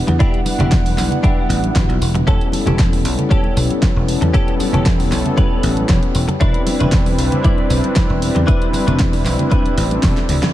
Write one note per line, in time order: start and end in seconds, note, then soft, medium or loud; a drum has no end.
0.00 0.17 G3 medium
0.00 0.17 B3 medium
0.00 0.17 D4 medium
0.00 0.17 E4 medium
0.00 0.18 F#5 medium
0.07 0.17 E2 medium
0.07 muted clean electric guitar stroke medium
0.07 closed hi-hat soft
0.07 high conga medium
0.07 low conga medium
0.19 0.94 G3 medium
0.19 0.94 B3 medium
0.19 0.40 D4 loud
0.19 0.95 D4 medium
0.19 0.40 E4 medium
0.19 0.95 E4 medium
0.19 0.40 G4 loud
0.19 0.95 F#5 loud
0.19 kick loud
0.19 closed hi-hat medium
0.34 closed hi-hat soft
0.46 open hi-hat loud
0.46 muted conga medium
0.46 high conga medium
0.58 0.98 E1 medium
0.58 0.72 D4 medium
0.58 0.72 E4 medium
0.58 0.72 G4 medium
0.58 closed hi-hat soft
0.58 low conga loud
0.71 kick loud
0.71 snare loud
0.71 closed hi-hat medium
0.85 muted clean electric guitar stroke soft
0.85 open hi-hat medium
0.85 high conga medium
0.97 1.08 B1 medium
0.97 1.59 G3 medium
0.97 1.60 B3 medium
0.97 1.60 D4 medium
0.97 1.60 E4 medium
0.97 1.60 F#5 medium
0.97 snare medium
0.97 open hi-hat loud
1.11 closed hi-hat soft
1.11 low conga medium
1.23 1.49 D4 medium
1.23 1.50 E4 medium
1.23 1.50 G4 medium
1.23 kick loud
1.23 closed hi-hat medium
1.23 high conga medium
1.49 1.69 A1 medium
1.49 open hi-hat loud
1.63 1.85 G3 medium
1.63 1.85 B3 medium
1.63 1.85 D4 medium
1.63 1.85 E4 medium
1.63 1.85 F#4 medium
1.63 closed hi-hat soft
1.63 high conga medium
1.75 1.86 G1 medium
1.75 muted clean electric guitar stroke soft
1.75 kick loud
1.75 snare loud
1.75 closed hi-hat medium
1.89 1.98 B1 medium
1.89 closed hi-hat soft
2.01 2.21 E1 medium
2.01 open hi-hat loud
2.14 muted clean electric guitar stroke medium
2.14 closed hi-hat soft
2.14 high conga medium
2.14 low conga medium
2.26 2.37 E1 medium
2.26 3.01 G3 medium
2.26 3.02 B3 medium
2.26 2.47 C#4 loud
2.26 3.02 C#4 medium
2.26 3.02 E4 medium
2.26 2.47 G4 medium
2.26 2.47 A4 loud
2.26 3.02 A4 medium
2.26 kick loud
2.26 closed hi-hat medium
2.41 closed hi-hat soft
2.52 open hi-hat loud
2.52 muted conga medium
2.52 high conga medium
2.66 3.05 E1 medium
2.66 2.79 C#4 medium
2.66 2.79 G4 medium
2.66 2.79 A4 medium
2.66 closed hi-hat soft
2.66 low conga medium
2.79 kick loud
2.79 snare loud
2.79 closed hi-hat medium
2.92 muted clean electric guitar stroke soft
2.92 open hi-hat medium
2.92 high conga medium
3.04 3.15 B1 medium
3.04 4.31 G3 medium
3.04 4.31 B3 medium
3.04 4.31 C#4 medium
3.04 4.31 E4 medium
3.04 4.32 A4 medium
3.04 open hi-hat loud
3.18 closed hi-hat soft
3.18 low conga medium
3.30 3.56 C#4 medium
3.30 3.57 G4 medium
3.30 3.57 A4 medium
3.30 kick loud
3.30 closed hi-hat medium
3.30 high conga medium
3.44 muted conga medium
3.56 3.67 B1 medium
3.56 open hi-hat loud
3.70 closed hi-hat soft
3.70 high conga medium
3.82 muted clean electric guitar stroke soft
3.82 kick loud
3.82 snare loud
3.82 closed hi-hat medium
3.96 4.15 E1 medium
4.08 open hi-hat loud
4.21 4.31 E2 medium
4.21 muted clean electric guitar stroke medium
4.21 closed hi-hat soft
4.21 high conga medium
4.21 low conga medium
4.33 5.08 G3 medium
4.33 5.08 B3 medium
4.33 4.54 C#4 loud
4.33 5.09 C#4 medium
4.33 5.09 E4 medium
4.33 4.54 G4 loud
4.33 4.54 A4 loud
4.33 5.09 A4 loud
4.33 kick loud
4.33 closed hi-hat medium
4.48 closed hi-hat soft
4.60 open hi-hat medium
4.60 muted conga medium
4.60 high conga medium
4.72 5.12 E1 medium
4.72 4.86 C#4 medium
4.72 4.86 G4 medium
4.72 4.86 A4 medium
4.72 closed hi-hat soft
4.72 low conga medium
4.86 kick loud
4.86 snare loud
4.86 closed hi-hat medium
4.99 muted clean electric guitar stroke soft
4.99 open hi-hat medium
4.99 high conga medium
5.11 5.22 B1 medium
5.11 5.73 G3 medium
5.11 5.73 B3 medium
5.11 5.74 C#4 medium
5.11 5.74 E4 medium
5.11 5.74 A4 loud
5.11 snare medium
5.11 open hi-hat loud
5.25 closed hi-hat soft
5.25 low conga medium
5.37 5.63 C#4 medium
5.37 5.63 G4 medium
5.37 5.63 B4 loud
5.37 kick loud
5.37 closed hi-hat medium
5.37 high conga medium
5.63 5.83 A1 medium
5.63 open hi-hat loud
5.76 5.98 G3 medium
5.76 5.98 B3 medium
5.76 5.98 C#4 medium
5.76 5.99 E4 medium
5.76 5.99 G4 loud
5.76 closed hi-hat soft
5.76 high conga medium
5.89 5.99 E1 medium
5.89 muted clean electric guitar stroke soft
5.89 kick loud
5.89 snare loud
5.89 closed hi-hat medium
6.03 closed hi-hat soft
6.15 6.25 E1 medium
6.15 open hi-hat loud
6.28 muted clean electric guitar stroke medium
6.28 closed hi-hat medium
6.28 high conga medium
6.28 low conga medium
6.39 6.51 E1 medium
6.39 7.15 G3 medium
6.39 7.15 C4 medium
6.39 6.60 D4 loud
6.39 7.15 D4 medium
6.39 6.61 E4 loud
6.39 7.15 E4 medium
6.39 6.61 B4 loud
6.39 7.16 B4 medium
6.39 kick loud
6.39 closed hi-hat medium
6.54 closed hi-hat soft
6.66 open hi-hat loud
6.66 muted conga medium
6.66 high conga medium
6.80 7.18 E1 medium
6.80 6.92 D4 medium
6.80 6.93 E4 medium
6.80 6.93 B4 medium
6.80 closed hi-hat soft
6.80 low conga medium
6.92 kick loud
6.92 snare loud
6.92 closed hi-hat medium
7.06 muted clean electric guitar stroke soft
7.06 open hi-hat medium
7.06 high conga medium
7.17 7.29 B1 medium
7.17 8.44 G3 medium
7.17 8.45 C4 medium
7.17 8.45 D4 medium
7.17 8.45 E4 medium
7.17 8.45 B4 loud
7.17 open hi-hat loud
7.32 closed hi-hat medium
7.32 low conga medium
7.44 7.70 D4 medium
7.44 7.70 E4 medium
7.44 7.70 D5 medium
7.44 kick loud
7.44 closed hi-hat medium
7.44 high conga medium
7.58 muted conga medium
7.70 7.80 B1 medium
7.70 open hi-hat loud
7.83 closed hi-hat medium
7.83 high conga medium
7.96 muted clean electric guitar stroke soft
7.96 kick loud
7.96 snare loud
7.96 closed hi-hat medium
8.10 8.29 E1 medium
8.22 open hi-hat loud
8.35 8.45 E2 medium
8.35 muted clean electric guitar stroke medium
8.35 closed hi-hat soft
8.35 high conga medium
8.35 low conga medium
8.47 9.22 G3 medium
8.47 9.22 C4 medium
8.47 8.67 D4 loud
8.47 9.22 D4 medium
8.47 8.67 E4 medium
8.47 9.23 E4 medium
8.47 8.67 B4 loud
8.47 9.23 B4 loud
8.47 kick loud
8.47 closed hi-hat medium
8.62 closed hi-hat soft
8.73 open hi-hat medium
8.73 muted conga medium
8.73 high conga medium
8.87 9.25 E1 medium
8.87 8.99 D4 medium
8.87 8.99 E4 medium
8.87 9.00 B4 medium
8.87 closed hi-hat medium
8.87 low conga loud
8.99 kick loud
8.99 snare loud
8.99 closed hi-hat medium
9.13 muted clean electric guitar stroke soft
9.13 open hi-hat medium
9.13 muted conga medium
9.13 high conga medium
9.25 9.36 B1 medium
9.25 9.87 G3 medium
9.25 9.87 C4 medium
9.25 9.88 D4 medium
9.25 9.88 E4 medium
9.25 9.88 B4 loud
9.25 snare medium
9.25 open hi-hat loud
9.39 closed hi-hat medium
9.39 low conga medium
9.51 9.77 D4 medium
9.51 9.77 E4 medium
9.51 9.77 B4 medium
9.51 kick loud
9.51 closed hi-hat medium
9.51 high conga medium
9.66 closed hi-hat soft
9.77 9.97 A1 medium
9.77 open hi-hat loud
9.91 10.12 G3 medium
9.91 10.13 C4 medium
9.91 10.13 D4 medium
9.91 10.13 E4 medium
9.91 10.13 A4 loud
9.91 closed hi-hat medium
9.91 muted conga soft
9.91 high conga medium
10.02 10.13 E1 medium
10.02 muted clean electric guitar stroke soft
10.02 kick loud
10.02 snare loud
10.02 open hi-hat medium
10.17 snare soft
10.17 closed hi-hat soft
10.29 10.39 D2 medium
10.29 open hi-hat loud
10.29 mid tom medium
10.42 muted clean electric guitar stroke medium
10.42 snare medium
10.42 closed hi-hat medium
10.42 muted conga medium
10.42 high conga medium
10.42 low conga medium